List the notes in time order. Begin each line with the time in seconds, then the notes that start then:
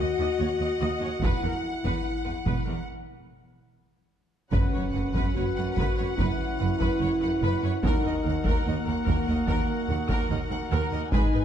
Already playing: F#4 D#5 F#5
0.19 D#2 D#5
0.39 D#2 C#5
0.59 D#2 D#5
0.80 D#2 D#5
1.01 D#2 C#5
1.21 E1 E2 E4 B4 F#5, taiko
1.42 E2 A#4
1.84 E2 B4, taiko
2.24 E2 B4
2.46 E1 E2 B4, taiko
2.65 E2 A#4
4.50 F#1 F#2 C#4 F#4 B4 F#5, taiko, impact
4.73 F#2 B4 C#5
4.93 F#1 F#2 B4 F#5
5.14 F#2 B4, taiko
5.34 F#1 F#2 F#4 B4 C#5
5.56 F#2 B4 F#5
5.75 F#1 B4, taiko
5.79 F#2 B4
5.96 F#2 B4 C#5
6.16 F#1 F#2 E4 B4, taiko
6.59 F#1 F#2 B4 F#5
6.79 F#2 B4, taiko
7.00 F#1 F#2 B4 C#5
7.20 F#2 B4 F#5
7.42 F#1 F#2 B4
7.62 F#2 B4 C#5
7.82 D#2 D#4 F#4 A#4 F#5, taiko
8.03 D#2 A#4 D#5
8.23 D#2 A#4
8.28 F#5
8.43 D#2 A#4, taiko
8.49 A#4
8.63 D#2 A#3 A#4
8.68 D#5
8.85 D#2 A#4 F#5
9.04 D#2 A#4, taiko
9.25 D#2 A#4 D#5
9.46 D#2 A#4, taiko
9.87 D#2 A#4 F#5
10.08 D#2 A#4, taiko
10.29 D#2 A#4 D#5
10.50 D#2 A#4 F#5
10.71 D#2 A#4
10.92 D#2 A#4 D#5
11.12 G#1 G#2 D#4 G#4 B4 D#5 G#5, taiko
11.33 G#2 B4